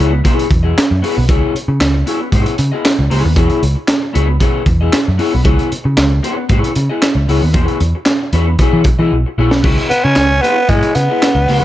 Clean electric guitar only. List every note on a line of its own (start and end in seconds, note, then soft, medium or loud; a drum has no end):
0.00 0.19 B3 medium
0.00 0.12 E4 medium
0.00 0.12 G#4 medium
0.00 0.11 C#5 medium
0.12 muted clean electric guitar stroke soft
0.24 0.45 B3 medium
0.24 0.46 E4 medium
0.24 0.46 G#4 medium
0.24 0.46 C#5 medium
0.51 muted clean electric guitar stroke soft
0.63 0.80 B3 soft
0.63 0.80 E4 medium
0.63 0.79 G#4 medium
0.63 0.79 D#5 medium
0.91 muted clean electric guitar stroke soft
1.02 1.23 B3 medium
1.02 1.16 E4 medium
1.02 1.16 G#4 loud
1.02 1.15 C#5 medium
1.16 muted clean electric guitar stroke soft
1.28 1.52 B3 medium
1.28 1.53 E4 medium
1.28 1.53 G#4 medium
1.28 1.53 C#5 loud
1.69 muted clean electric guitar stroke soft
1.94 muted clean electric guitar stroke soft
2.06 2.27 B3 medium
2.06 2.21 E4 medium
2.06 2.20 G#4 medium
2.06 2.20 C#5 medium
2.21 muted clean electric guitar stroke soft
2.33 2.53 B3 medium
2.33 2.54 E4 medium
2.33 2.54 G#4 medium
2.33 2.54 C#5 medium
2.59 muted clean electric guitar stroke soft
2.72 2.88 B3 medium
2.72 2.88 E4 soft
2.72 2.88 G#4 medium
2.72 2.87 D#5 medium
2.99 muted clean electric guitar stroke soft
3.10 3.31 B3 medium
3.10 3.24 E4 medium
3.10 3.24 G#4 loud
3.10 3.23 C#5 loud
3.24 muted clean electric guitar stroke soft
3.36 3.60 B3 medium
3.36 3.61 E4 medium
3.36 3.61 G#4 loud
3.36 3.61 C#5 medium
3.75 muted clean electric guitar stroke soft
4.02 muted clean electric guitar stroke soft
4.13 4.35 B3 medium
4.13 4.28 E4 medium
4.13 4.28 G#4 medium
4.13 4.27 C#5 medium
4.28 muted clean electric guitar stroke soft
4.40 4.61 B3 medium
4.40 4.61 E4 medium
4.40 4.62 G#4 medium
4.40 4.62 C#5 medium
4.67 muted clean electric guitar stroke soft
4.81 4.97 B3 soft
4.81 4.97 E4 soft
4.81 4.96 G#4 medium
4.81 4.96 D#5 medium
5.07 muted clean electric guitar stroke soft
5.18 5.39 B3 loud
5.18 5.32 E4 loud
5.18 5.32 G#4 loud
5.18 5.31 C#5 medium
5.33 muted clean electric guitar stroke soft
5.44 5.69 B3 medium
5.44 5.69 E4 medium
5.44 5.69 G#4 medium
5.44 5.69 C#5 medium
5.84 muted clean electric guitar stroke medium
6.11 muted clean electric guitar stroke medium
6.23 6.44 B3 medium
6.23 6.36 E4 medium
6.23 6.36 G#4 medium
6.23 6.35 C#5 medium
6.36 muted clean electric guitar stroke soft
6.49 6.70 B3 medium
6.49 6.70 E4 medium
6.49 6.70 G#4 medium
6.49 6.71 C#5 medium
6.75 muted clean electric guitar stroke soft
6.89 7.06 B3 soft
6.89 7.05 E4 soft
6.89 7.05 G#4 medium
6.89 7.05 D#5 medium
7.16 muted clean electric guitar stroke soft
7.29 7.49 B3 medium
7.29 7.42 E4 medium
7.29 7.42 G#4 loud
7.29 7.41 C#5 medium
7.42 muted clean electric guitar stroke soft
7.53 7.78 B3 medium
7.53 7.78 E4 medium
7.53 7.78 G#4 medium
7.53 7.79 C#5 medium
7.95 muted clean electric guitar stroke soft
8.22 muted clean electric guitar stroke soft
8.33 8.54 B3 medium
8.33 8.47 E4 medium
8.33 8.47 G#4 medium
8.33 8.46 C#5 medium
8.47 muted clean electric guitar stroke medium
8.60 8.80 B3 medium
8.60 8.80 E4 medium
8.60 8.81 G#4 medium
8.60 8.81 C#5 medium
8.86 muted clean electric guitar stroke soft
8.99 9.15 B3 medium
8.99 9.15 E4 medium
8.99 9.15 G#4 medium
8.99 9.14 D#5 medium
9.26 muted clean electric guitar stroke soft
9.38 9.59 B3 medium
9.38 9.52 E4 loud
9.38 9.51 G#4 medium
9.38 9.50 C#5 loud
9.51 muted clean electric guitar stroke soft
9.63 9.88 B3 medium
9.63 9.88 E4 medium
9.63 9.88 G#4 medium
9.63 9.89 C#5 medium
10.04 muted clean electric guitar stroke soft
10.30 muted clean electric guitar stroke soft
10.42 10.63 B3 medium
10.42 10.56 E4 medium
10.42 10.56 G#4 medium
10.42 10.55 C#5 loud
10.56 muted clean electric guitar stroke soft
10.68 10.89 B3 medium
10.68 10.90 E4 medium
10.68 10.90 G#4 medium
10.68 10.90 C#5 medium
10.95 muted clean electric guitar stroke soft
11.09 11.26 B3 soft
11.09 11.25 E4 medium
11.09 11.25 G#4 soft
11.09 11.25 D#5 medium
11.36 muted clean electric guitar stroke soft
11.48 11.64 B3 medium
11.48 11.62 E4 medium
11.48 11.61 G#4 loud
11.48 11.61 C#5 medium